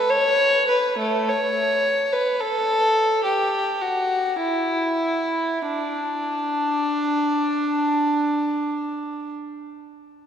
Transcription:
violin
Already playing: B4
0.10 C#5
0.68 B4
0.98 A3
1.29 C#5
2.13 B4
2.40 A4
3.24 G4
3.82 F#4
4.42 E4
5.67 D4

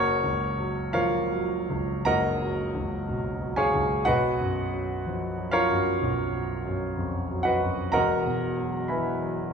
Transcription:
grand piano
Already playing: F#1 F#4 A#4 C#5
0.24 C#2
0.59 F#3
0.93 F3 F4 A#4 C#5 F5
1.32 F#3
1.70 C#2
2.05 F#1 A#4 D#5 F#5 A#5
2.42 F#3
2.75 C#2
3.09 B1
3.42 F#3
3.56 G#4 C#5 F5 G#5
3.74 C#2
4.05 B1 F#4 B4 D#5 F#5
4.41 F#2
4.73 F#3
5.06 F3
5.37 F#3
5.51 F4 A#4 C#5 F5
5.70 F#2
6.02 B1
6.34 F#3
6.66 F#2
6.97 F2
7.30 F#3
7.43 F#4 B4 D#5 F#5
7.61 F#2
7.92 E1 E2 A#4 D#5 F#5 A#5
8.26 B2
8.58 F#3
8.88 E3 B4 E5 G#5 B5
9.22 F#3

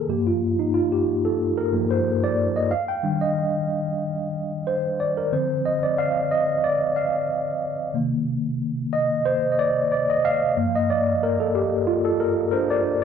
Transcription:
tine electric piano
Already playing: G#4 A4 A#4
0.08 G2 F3 A#3 G4
0.27 F4
0.59 D#4
0.74 F4
0.92 G4
1.25 A4
1.57 A#4
1.72 G2 F3 A#3
1.91 C5
2.24 D5
2.56 D#5
2.71 F5
2.88 G5
3.03 D#3 G3 D4
3.21 D#5
4.67 C5
5.00 D5
5.17 A#4
5.32 D3 F3 C4 C5
5.65 D#5
5.83 D5
5.98 F5
6.31 D#5
6.64 D5
6.96 F5
7.94 C3 D#3 A#3
8.93 D#5
9.25 C5
9.52 D#5
9.59 D5
9.92 D5
10.10 D#5
10.25 F5
10.56 G2 F3 A#3
10.75 D#5
10.90 D5
11.23 A#4
11.40 A4
11.55 G4
11.87 F4
12.05 A4
12.20 A#4
12.51 D4 A#4 C5
12.70 D5

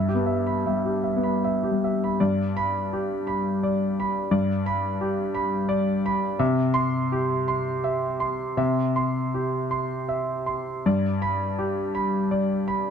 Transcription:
grand piano
Already playing: G2 E5
0.09 G4
0.15 B3
0.26 E5
0.47 B5
0.66 G3 E5
0.86 G4
1.04 E5
1.16 B3
1.23 B5
1.44 E5
1.63 G4
1.71 G3
1.84 E5
2.04 B5
2.20 G2 D5
2.57 B5
2.93 G4
3.27 B5
3.63 D5
4.00 B5
4.31 G2 D5
4.66 B5
5.01 G4
5.35 B5
5.69 D5
6.06 B5
6.39 C3 E5
6.74 C6
7.12 G4
7.48 C6
7.84 E5
8.20 C6
8.57 C3 E5
8.96 C6
9.34 G4
9.71 C6
10.09 E5
10.46 C6
10.86 G2 D5
11.22 B5
11.58 G4
11.95 B5
12.31 D5
12.68 B5

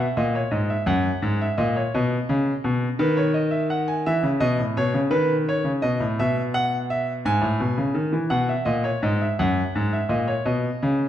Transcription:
grand piano
0.00 E5
0.17 A#2 D#5
0.35 C#5
0.51 G#2 D#5
0.70 E5
0.86 F#2 F#5
1.22 G#2
1.41 E5
1.58 A#2 D#5
1.76 C#5
1.94 B2 D#5
2.29 C#3
2.64 B2
2.99 D#3 B4
3.17 C#5
3.34 D#5
3.51 E5
3.70 F#5
3.88 G#5
4.06 E3 E5
4.23 C#3
4.40 B2 D#5
4.59 A2
4.77 B2 C#5
4.94 C#3
5.10 D#3 B4
5.49 C#5
5.64 C#3
5.82 B2 D#5
6.00 A2
6.19 B2 E5
6.54 F#5
6.90 E5
7.25 G#2 G#5
7.41 A2
7.60 B2
7.77 C#3
7.94 D#3
8.12 E3
8.30 B2 F#5
8.49 E5
8.65 A#2 D#5
8.84 C#5
9.02 G#2 D#5
9.21 E5
9.39 F#2 F#5
9.75 G#2
9.93 E5
10.09 A#2 D#5
10.28 C#5
10.45 B2 D#5
10.83 C#3

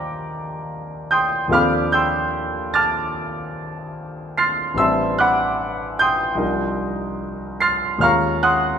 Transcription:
grand piano
Already playing: D#2 G3 A#3 D#4 G4 A#4 C5 D5 D#5 F5 G5 A5 A#5 C6 D6
1.11 G5 C6 D#6 G6
1.48 D#2 F3 C4 D4 A4
1.52 F5 B5 D6 F6
1.92 G5 C6 E6 G6
2.74 A5 D6 F6 A6
4.38 C6 F6 A6 C7
4.74 A1 G3 C4 E6
4.78 D4 B4 E5 A5 C6
5.18 F#5 B5 D6 F#6
5.99 G5 C6 D#6 G6
6.35 C2 F3 D4 D#4 A#4
7.60 C6 F6 A6 C7
7.98 D#2 G#3 C#4 F4 A#4 F6
8.02 F5 A#5 C#6
8.43 F#5 C6 D#6 F#6

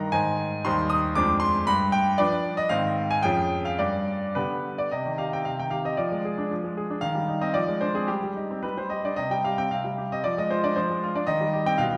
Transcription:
grand piano
Already playing: G2 D#3 D#4 A#4 A#5
0.12 G#2 D#3 D#4 C5 G#5
0.65 D#2 G3 D#4 C5 C6
0.90 D#6
1.15 F2 G#3 D4 C5 D6
1.40 C6
1.67 G2 B5
1.92 G5
2.18 F3 D4 B4 D5
2.57 D#5
2.69 G#2 D#3 C4 C5 F5
3.11 G#5
3.23 F2 F3 C#4 G#4 G5
3.65 F5
3.79 G2 D5
4.35 D3 B3 G4 B4
4.78 D5
4.91 C3 D#5
5.05 D#3
5.18 G4 F5
5.33 C4 G5
5.45 C3 F5
5.60 D#3 G5
5.71 G4 F5
5.85 C4 D#5
5.97 F3 D5
6.12 G#3
6.25 G#4
6.38 D4
6.51 F3
6.64 G#3
6.77 G#4
6.90 D4
7.01 D#3 F5
7.15 G3
7.29 D#4
7.41 C4 D#5
7.54 F3 D5
7.69 G#3
7.81 D4 C5
7.95 C4 G#4
8.08 G3 G4
8.23 G3
8.36 D#4
8.51 C4
8.63 G3 B4
8.78 G3 C5
8.90 G4 D#5
9.05 D4 D5
9.16 C3 D#5
9.31 G3 G5
9.44 G4 F5
9.58 C4 G5
9.71 C3 F5
9.84 G3
9.98 G4
10.12 C4 D#5
10.24 F3 D5
10.38 G#3 D#5
10.50 F4 C5
10.64 D4 D5
10.76 F3 C5
10.90 G#3
11.03 F4
11.15 D4 D5
11.27 D#3 D#5
11.41 G3
11.53 G4
11.66 C4 G5
11.78 B2 F5
11.93 F3

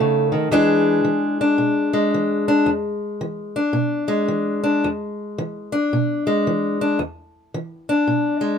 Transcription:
steel-string acoustic guitar
Already playing: A3 D#4 F#4
0.00 C#3
0.32 D#3
0.51 E2 E3 G#3 D4 G#4
1.04 E3
1.41 D4
1.58 B2
1.93 G#3
2.14 E3
2.48 D4
2.66 E2
3.21 E3
3.56 D4
3.73 B2
4.08 G#3
4.28 E3
4.64 D4
4.84 E2
5.38 E3
5.72 D4
5.93 B2
6.27 G#3
6.47 E3
6.81 D4
6.99 E2
7.54 E3
7.89 D4
8.07 B2
8.41 G#3

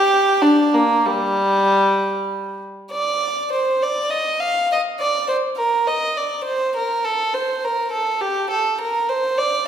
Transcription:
violin
Already playing: G4
0.42 D4
0.74 A#3
1.06 G3
2.91 D5
3.53 C5
3.82 D5
4.10 D#5
4.40 F5
4.72 D#5
5.00 D5
5.28 C5
5.57 A#4
5.87 D#5
6.17 D5
6.44 C5
6.76 A#4
7.05 A4
7.34 C5
7.64 A#4
7.92 A4
8.21 G4
8.50 A4
8.81 A#4
9.09 C5
9.38 D5

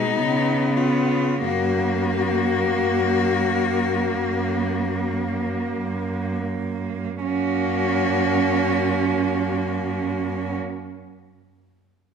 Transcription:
cello
Already playing: G#3 B3 D#4
0.16 C#3 B3
0.77 B3 F4
1.42 F#2 A#3 F#4
2.12 A#3
2.80 F#2
3.48 A#3
4.19 F#2
4.92 A#3
5.68 F#2
6.46 A#3
7.23 F#2 A#3 C#4 F#4

